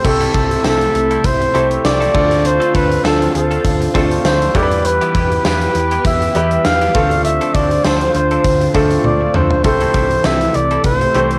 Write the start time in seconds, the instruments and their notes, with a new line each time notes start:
0.04 fingered electric bass C2, analog synth pad C3 A3 E4, grand piano C3 A3 C4 E4 G4 A4, flugelhorn A4, muted clean electric guitar stroke, kick, crash
0.20 clean electric guitar G3 C4 E4 A4, closed hi-hat
0.34 fingered electric bass C2, clean electric guitar G3 C4 E4 A4, kick, closed hi-hat
0.51 muted clean electric guitar stroke, closed hi-hat
0.64 fingered electric bass C2, clean electric guitar G3 C4 E4 A4, flugelhorn A4, snare, tambourine
0.81 muted clean electric guitar stroke, closed hi-hat
0.94 fingered electric bass C2, muted clean electric guitar stroke, closed hi-hat
1.11 clean electric guitar G3 C4 E4 A4, closed hi-hat
1.24 fingered electric bass C2, flugelhorn C5, kick, closed hi-hat
1.41 muted clean electric guitar stroke, closed hi-hat
1.54 fingered electric bass C2, clean electric guitar G3 C4 E4 A4, grand piano A3 C4 E4 G4 C5, closed hi-hat
1.71 muted clean electric guitar stroke, closed hi-hat
1.85 fingered electric bass C2, flugelhorn D5, muted clean electric guitar stroke, snare, tambourine
2.01 clean electric guitar G3 C4 E4 A4, closed hi-hat
2.14 fingered electric bass D2, grand piano D3 A3 C4 D4 F4 A4, analog synth pad D3 C4 F4, kick, crash
2.31 muted clean electric guitar stroke, closed hi-hat
2.44 flugelhorn C5, muted clean electric guitar stroke, closed hi-hat
2.60 clean electric guitar A3 C4 F4 A4, closed hi-hat
2.74 fingered electric bass D2, clean electric guitar A3 C4 F4 A4, flugelhorn B4, kick, closed hi-hat
2.91 muted clean electric guitar stroke, closed hi-hat
3.04 fingered electric bass D2, clean electric guitar A3 C4 F4 A4, flugelhorn A4, snare, tambourine
3.21 muted clean electric guitar stroke, closed hi-hat
3.34 fingered electric bass D2, flugelhorn A4, muted clean electric guitar stroke, closed hi-hat
3.51 clean electric guitar A3 C4 F4 A4, closed hi-hat
3.65 fingered electric bass D2, muted clean electric guitar stroke, kick, closed hi-hat
3.81 muted clean electric guitar stroke, closed hi-hat
3.94 fingered electric bass D2, clean electric guitar A3 C4 F4 A4, grand piano A3 C4 D4 F4 A4, kick, closed hi-hat
4.11 muted clean electric guitar stroke, closed hi-hat
4.25 fingered electric bass D2, flugelhorn C5, snare, tambourine
4.41 muted clean electric guitar stroke, closed hi-hat
4.55 fingered electric bass E2, grand piano E3 G3 B3 E4 G4 A4, analog synth pad E3 B3 G4, clean electric guitar G3 B3 E4 G4, flugelhorn D5, kick, closed hi-hat
4.62 grand piano B4
4.71 closed hi-hat
4.85 flugelhorn B4, muted clean electric guitar stroke, closed hi-hat
5.01 clean electric guitar G3 B3 E4 G4, closed hi-hat
5.15 fingered electric bass E2, clean electric guitar G3 B3 E4 G4, kick, closed hi-hat
5.32 muted clean electric guitar stroke, closed hi-hat
5.45 fingered electric bass E2, clean electric guitar G3 B3 E4 G4, flugelhorn B4, snare, tambourine
5.61 muted clean electric guitar stroke, closed hi-hat
5.75 fingered electric bass E2, muted clean electric guitar stroke, closed hi-hat
5.91 clean electric guitar G3 B3 E4 G4, closed hi-hat
6.05 fingered electric bass E2, flugelhorn E5, kick, closed hi-hat
6.22 muted clean electric guitar stroke, closed hi-hat
6.35 fingered electric bass E2, grand piano E3 G3 B3 G4 B4, clean electric guitar G3 B3 E4 G4, closed hi-hat
6.51 muted clean electric guitar stroke, closed hi-hat
6.65 fingered electric bass E2, flugelhorn F5, muted clean electric guitar stroke, snare, tambourine
6.81 clean electric guitar G3 B3 E4 G4, closed hi-hat
6.95 fingered electric bass D2, grand piano D3 A3 C4 D4 F4 A4, analog synth pad D3 C4 F4, clean electric guitar F3 C4 D4 A4, kick, closed hi-hat
7.11 muted clean electric guitar stroke, closed hi-hat
7.24 flugelhorn E5, muted clean electric guitar stroke, closed hi-hat
7.41 clean electric guitar F3 C4 D4 A4, closed hi-hat
7.54 fingered electric bass D2, clean electric guitar F3 C4 D4 A4, flugelhorn D5, kick, closed hi-hat
7.71 closed hi-hat
7.84 fingered electric bass D2, clean electric guitar F3 C4 D4 A4, flugelhorn C5, snare, tambourine
8.01 muted clean electric guitar stroke, closed hi-hat
8.14 fingered electric bass D2, flugelhorn C5, muted clean electric guitar stroke, closed hi-hat
8.31 clean electric guitar F3 C4 D4 A4, closed hi-hat
8.44 fingered electric bass D2, kick, closed hi-hat
8.61 muted clean electric guitar stroke, closed hi-hat
8.74 fingered electric bass D2, clean electric guitar F3 C4 D4 A4, grand piano A3 C4 D4 F4 A4, kick, closed hi-hat
8.91 muted clean electric guitar stroke, closed hi-hat
9.04 fingered electric bass D2, flugelhorn D5, muted clean electric guitar stroke, high tom
9.21 muted clean electric guitar stroke
9.34 fingered electric bass D2, clean electric guitar F3 C4 D4 A4, flugelhorn C5, mid tom
9.51 muted clean electric guitar stroke, floor tom
9.64 fingered electric bass C2, grand piano C3 A3 C4 E4 G4 A4, analog synth pad C3 E3 A3, flugelhorn C5, muted clean electric guitar stroke, kick, closed hi-hat
9.81 clean electric guitar G3 C4 E4 A4, closed hi-hat
9.94 fingered electric bass C2, clean electric guitar G3 C4 E4 A4, kick, closed hi-hat
10.11 muted clean electric guitar stroke, closed hi-hat
10.24 fingered electric bass C2, clean electric guitar G3 C4 E4 A4, flugelhorn E5, snare, tambourine
10.41 muted clean electric guitar stroke, closed hi-hat
10.54 fingered electric bass C2, flugelhorn D5, muted clean electric guitar stroke, closed hi-hat
10.71 clean electric guitar G3 C4 E4 A4, closed hi-hat
10.84 fingered electric bass C2, flugelhorn C5, kick, closed hi-hat
11.01 muted clean electric guitar stroke, closed hi-hat
11.14 fingered electric bass C2, grand piano E3 A3 C4 G4 C5, clean electric guitar G3 C4 E4 A4, closed hi-hat
11.31 closed hi-hat